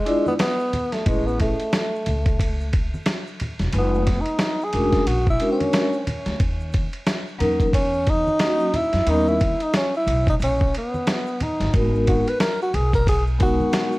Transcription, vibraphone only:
0.05 G#3 D4 E4 F4 D5
1.06 A3 C#4 E4 G#4 B4
3.73 G#3 B3 D#4 F4 B4
4.73 G#3 C#4 D4 F#4 A#4
5.39 G#3 C#4 D4 F#4 A#4
7.39 F#3 A#3 C#4 D#4 A#4
8.40 F#3 A#3 C#4 D#4 F#4
9.07 G3 B3 C#4 D#4 A#4
11.73 G#3 A#3 D#4 F#4 A#4
11.80 B3
13.39 G#3 B3 D#4 F#4 A#4

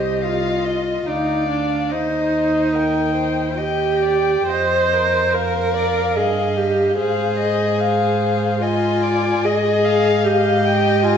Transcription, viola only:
Already playing: G4
0.23 F4
1.07 D#4
1.49 D4
1.91 D#4
3.58 G4
4.47 C5
5.33 A#4
6.16 G#4
6.57 G4
6.98 G#4
8.61 F4
9.44 G#4
10.24 G4
11.03 F4

